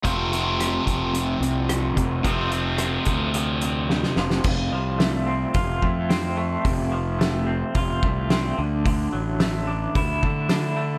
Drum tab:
CC |----------------|----------------|x---------------|----------------|
HH |x-x-x-x-x-x-x-x-|x-x-x-x-x-x-----|----o---o---o---|o---o---o---o---|
SD |----r-------r---|----r-------oooo|----o-------o---|----o-------o---|
BD |o-----o-------o-|o-----o---------|o-------o-o-----|o-------o-o-----|

CC |----------------|
HH |o---o---o---o---|
SD |----o-------o---|
BD |o-------o-o-----|